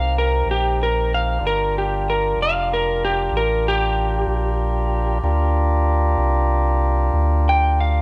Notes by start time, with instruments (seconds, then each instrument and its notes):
Already playing: sub bass C2, tonewheel organ C4 D#4 G4 A#4, electric slide guitar F5
0.18 electric slide guitar A#4
0.46 sub bass A#1
0.51 electric slide guitar G4
0.83 electric slide guitar A#4
1.14 electric slide guitar F5
1.40 sub bass G1, tonewheel organ D4 F4 G4 A#4
1.47 electric slide guitar A#4
1.78 electric slide guitar G4
2.10 electric slide guitar A#4
2.36 sub bass F1
2.42 electric slide guitar F5
2.74 electric slide guitar A#4
3.05 electric slide guitar G4
3.32 sub bass A1
3.37 electric slide guitar A#4
3.68 electric slide guitar G4
4.27 sub bass A#1
5.23 sub bass D2, tonewheel organ D4 F4 G4 A#4
6.17 sub bass C2
7.13 sub bass D2
7.49 electric slide guitar G5
7.81 electric slide guitar F5